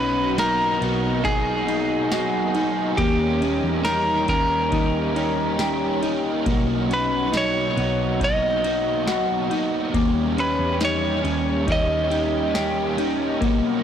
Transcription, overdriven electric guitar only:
Already playing: D#4 F#4
0.37 B2 F#3 A#3 D#4 F#4
0.81 A#3 D#4 F#4
1.24 F#3 A#3 D#4 F#4
1.67 D#4 F#4
1.71 A#3
2.11 B2 F#3 A#3 D#4 F#4
2.54 D#4 F#4
2.58 A#3
2.97 D#3 A#3 C#4 G4
3.41 C#4 G4
3.46 A#3
3.84 D#3 A#3 C#4 G4
4.28 A#3 C#4 G4
4.71 D#3 A#3 C#4 G4
5.14 A#3 C#4 G4
5.58 D#3 A#3 C#4 G4
6.02 A#3 C#4 G4
6.46 B2 F#3 A#3 D#4 F#4
6.89 D#4 F#4
7.33 B2 F#3 A#3 D#4 F#4
7.76 A#3 D#4 F#4
8.20 F#3 A#3 D#4 F#4
8.64 D#4 F#4
8.68 A#3
9.06 B2 F#3 A#3 D#4 F#4
9.50 D#4 F#4
9.54 A#3
9.94 D#3 A#3 C#4 G4
10.37 C#4 G4
10.80 D#3 A#3 C#4 G4
11.23 A#3 C#4 G4
11.67 D#3 A#3 C#4 G4
12.10 A#3 C#4 G4
12.54 D#3 A#3 C#4 G4
12.97 A#3 C#4 G4
13.42 B2 F#3 A#3 D#4 F#4

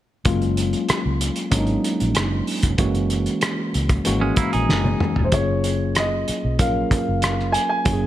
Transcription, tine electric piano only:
0.25 F#3 G#3 A#3 C#4 F4
1.51 F#3 G#3 A#3 C#4 D4
1.58 D#4
2.78 E3 G#3 A#3 C#4 F#4
4.04 E3 G#3 A#3 C#4 F#4
5.31 F#3 A3 C#4 F4 G#4
5.39 A#3
6.58 F#3 A#3 C#4 F4 A#4
7.85 F#3 A#3 C#4 E4 F#4
7.93 G#4

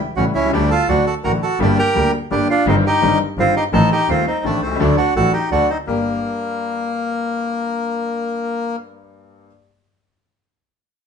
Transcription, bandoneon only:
0.16 C#4 F#4
0.35 C#4 E4
0.53 D4 G4
0.70 F4 A4
0.89 D4 F#4
1.07 F#4 A4
1.24 F#4 A#4
1.42 F#4 A4
1.62 D4 G4
1.79 G4 A#4
2.31 D4 G4
2.50 D4 F4
2.68 C4 D#4
2.87 D#4 G4
3.40 C4 F4
3.56 D#4 G4
3.73 D#4 A4
3.92 D#4 G4
4.09 C4 F4
4.27 C4 D#4
4.45 A3 D4
4.62 A3 C4
4.80 A3 D4
4.97 D4 F#4
5.16 F#4 A4
5.33 D#4 G4
5.51 D4 F#4
5.70 C4 D#4
5.87 A#3

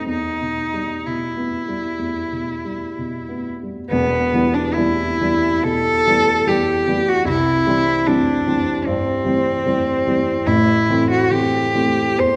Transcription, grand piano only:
Already playing: B2 A3 C4
0.07 E2
0.42 B2
0.74 G3
1.07 B2
1.37 B3
1.68 G3
1.99 E2
2.32 B2
2.65 G3
2.98 B2
3.29 B3
3.63 G3
3.91 E1 E2
4.34 E3 G3 B3
4.77 E3 G3 B3
5.21 E3 G3 B3
5.64 B2
6.06 E3 G3 B3
6.47 E3 G3 B3
6.87 E3 G3 B3
7.25 C2 C3
7.66 E3 G3 C4
8.07 E3 G3 C4
8.47 E3 G3 C4
8.87 G2
9.25 E3 G3 C4
9.66 E3 G3 C4
10.07 E3 G3 C4
10.46 A1 A2
10.89 E3 A3 C4
11.31 E3 A3 C4
11.74 E3 A3 C4
12.16 E2

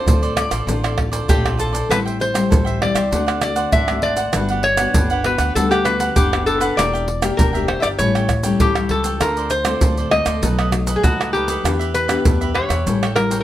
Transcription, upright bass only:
0.06 D2
0.51 A1
0.67 A1
1.29 A#1
1.89 A1
2.51 A1
2.95 C2
3.12 D2
3.73 G#1
4.34 G1
4.95 G1
5.39 D2
5.56 D2
6.16 F#1
6.78 E1
7.39 E1
7.82 G1
7.99 A1
8.60 A1
8.90 C#2
9.21 D2
9.82 D2
10.26 D2
10.42 B1
11.04 C#2
11.64 E2
12.26 E2
12.70 E2
12.86 A1

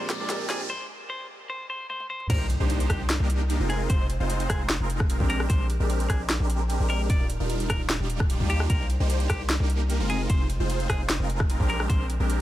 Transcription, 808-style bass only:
2.30 C2
2.60 C2
2.90 C2
3.20 C2
3.60 F1
3.90 F1
4.20 F1
4.50 F1
4.80 F1
5.20 A#1
5.50 A#1
5.80 A#1
6.10 A#1
6.40 A#1
6.80 A#1
7.10 D#1
7.40 D#1
7.70 D#1
8.00 D#1
8.40 D#2
8.70 C2
9.00 C2
9.30 C2
9.60 C2
10.00 F1
10.30 F1
10.60 F1
10.90 F1
11.20 F1
11.60 A#1
11.90 A#1
12.20 A#1

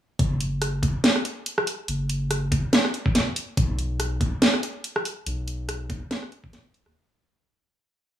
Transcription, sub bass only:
0.19 F#1
0.83 F#1
1.88 F#1
2.52 F#1
3.57 B1
4.21 B1
5.26 B1
5.90 B1
6.86 D#2

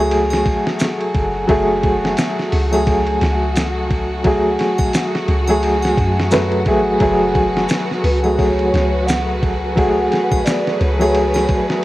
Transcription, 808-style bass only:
Already playing: C#2
1.15 F#1
1.49 F#1
2.53 C#2
3.21 C#2
5.28 C#2
5.97 F#2
6.66 A1
7.01 F#1
8.04 C#2
8.74 C#2
10.81 C#2

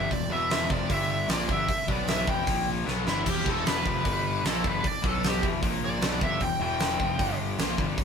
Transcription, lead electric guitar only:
Already playing: E5
0.12 D5
0.32 E5
0.52 E5
0.71 D5
0.92 E5
1.11 E5
1.30 D5
1.51 E5
1.69 E5
1.88 D5
2.09 E5
2.29 G5
3.07 E4
3.29 G4
3.49 A4
3.67 B4
4.46 A4
4.67 B4
4.87 D5
5.08 A4
5.27 G4
5.85 D5
6.23 E5
6.43 G5
6.63 G5

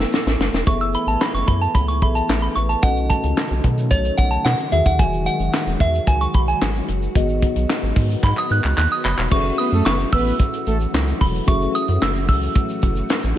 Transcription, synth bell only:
Already playing: E6
0.67 C#6
0.81 E6
0.95 B5
1.08 A5
1.21 B5
1.35 C#6
1.48 B5
1.61 A5
1.75 B5
1.88 C#6
2.02 B5
2.15 A5
2.42 B5
2.55 C#6
2.69 A5
2.83 F#5
3.10 A5
3.91 C#5
4.17 F#5
4.31 A5
4.45 F#5
4.72 E5
4.86 F#5
4.99 G#5
5.26 F#5
5.81 E5
6.08 G#5
6.21 C#6
6.35 B5
6.48 G#5
8.24 B5
8.38 D#6
8.52 F#6
8.78 F#6
8.92 D#6
9.05 B5
9.32 C#6
9.58 D#6
9.85 C#6
10.13 E6
11.21 B5
11.48 C#6
11.75 D#6
12.02 E6
12.29 E6

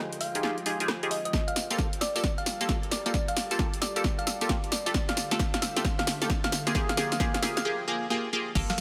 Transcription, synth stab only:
Already playing: D#4 F4 G4 G#4
0.35 D#4 F4 G4 G#4
0.43 D#4 F4 G4 G#4
0.66 D#4 F4 G4 G#4
0.80 D#4 F4 G4 G#4
1.03 D#4 F4 G4 G#4
1.70 A#3 F4 G4 A4
2.16 A#3 F4 G4 A4
2.61 A#3 F4 G4 A4
3.06 A#3 F4 G4 A4
3.51 A#3 F4 G4 A4
3.96 A#3 F4 G4 A4
4.41 A#3 F4 G4 A4
4.86 A3 F4 G4 A4
5.31 A3 F4 G4 A4
5.77 A3 F4 G4 A4
6.22 A3 F4 G4 A4
6.67 A#3 F4 G4 G#4
6.75 A#3 F4 G4 G#4
6.97 A#3 F4 G4 G#4
7.20 A#3 F4 G4 G#4
7.42 A#3 F4 G4 G#4
7.65 A#3 F4 G4 G#4
7.88 A#3 F4 G4 G#4
8.10 A#3 F4 G4 G#4
8.33 A#3 F4 G4 G#4
8.55 A#3 F4 G4 A4

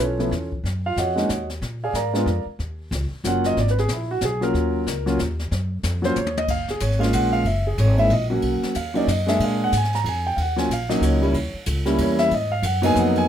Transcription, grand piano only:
0.01 C#4 F4 A4 C#5
0.19 F3 A3 B3 E4
0.86 F4 F5
0.98 F#4 C#5 D#5 F#5
1.16 G#3 A#3 C#4 D#4
1.84 G#4 D5 F5 G#5
1.95 A#4 D5 F5 A#5
2.13 G#3 B3 D4 F4
3.24 F#3 A#3 C#4 F4 F#5
3.46 D#5
3.60 D5
3.71 B4
3.79 G#4
3.92 E4
4.11 F#4
4.25 G#4
4.41 F#3 A#3 C#4 F4 A#4
5.06 F#3 A#3 C#4 F4
6.02 F#3 A#3 C#4 F4 C5
6.17 C#5
6.38 D#5
6.50 F5
6.70 G#4
6.81 C#5
6.99 G#3 A#3 C#4 F4 F5
7.14 F#5
7.33 F5
7.47 E5
7.67 G#4
7.80 C#5
7.98 G#3 A#3 D#4 E4 E5
8.13 D#5
8.30 F#3 A#3 C#4 F#4
8.76 F5
8.94 F#3 A#3 C#4 D#4 D5
9.11 D#5
9.27 G#3 A#3 D4 G#4 E5
9.44 F5
9.64 F#5
9.77 G#5
9.95 A#5
10.09 G#5
10.27 G5
10.36 F5
10.42 F#5
10.56 F#3 A#3 C#4 F4 G#5
10.73 F5
10.89 F#3 A#3 C#4 D#4 D#5
11.04 C#5
11.22 G3 A#3 C#4 E4
11.86 G3 A#3 C#4 E4
12.01 C#5
12.19 E5
12.34 D#5
12.52 F5
12.66 F#5
12.82 F#3 A#3 B3 D#4 G#5
12.99 F#5
13.18 G#5

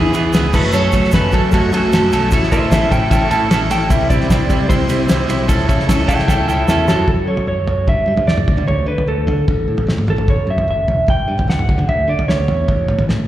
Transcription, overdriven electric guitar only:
Already playing: E3 B3 E4 G#4
0.14 E3 B3 E4 G#4
0.33 E3 B3 E4 G#4
0.53 F#3 A3 C#4 A4
0.72 F#3 A3 C#4 A4
0.92 F#3 A3 C#4 A4
1.13 F#3 A3 C#4 A4
1.32 F#3 A3 C#4 A4
1.53 F#3 A3 C#4 A4
1.73 F#3 A3 C#4 A4
1.93 F#3 A3 C#4 A4
2.12 F#3 A3 C#4 A4
2.33 C#4 E4 A4
2.52 C#4 E4 A4
2.72 C#4 E4 A4
2.91 C#4 E4 A4
3.10 C#4 E4 A4
3.30 C#4 E4 A4
3.50 C#4 E4 A4
3.71 C#4 E4 A4
3.89 G3 C4 E4
4.10 G3 C4 E4
4.30 G3 C4 E4
4.50 G3 C4 E4
4.69 G3 C4 E4
4.89 G3 C4 E4
5.08 G3 C4 E4
5.29 G3 C4 E4
5.48 C#4 E4 A4
5.68 C#4 E4 A4
5.88 C#4 E4 A4
6.08 C#4 E4 A4
6.28 C#4 E4 A4
6.48 C#4 E4 A4
6.69 C#4 E4 A4
6.89 C#4 E4 A4

